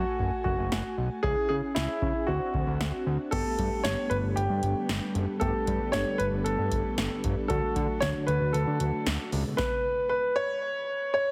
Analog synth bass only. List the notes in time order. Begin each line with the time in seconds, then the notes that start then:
0.19 F#1
0.45 F#1
0.59 F#1
0.72 F#1
0.98 B1
1.24 C#2
1.50 C#3
1.76 C#2
2.02 C#3
2.28 D2
2.54 D2
2.67 D2
2.80 D2
3.06 D2
3.33 G1
3.59 G2
3.85 G1
4.11 G1
4.24 G1
4.37 G1
4.50 G2
4.63 G1
4.89 G1
5.15 F#1
5.41 G1
5.67 G2
5.93 G1
6.19 G1
6.32 G1
6.46 G1
6.59 G2
6.71 G1
6.98 G1
7.24 G1
7.50 D2
7.76 D3
8.02 D2
8.28 D2
8.41 D2
8.54 D2
8.67 D3
8.80 D2
9.06 D2
9.33 C#2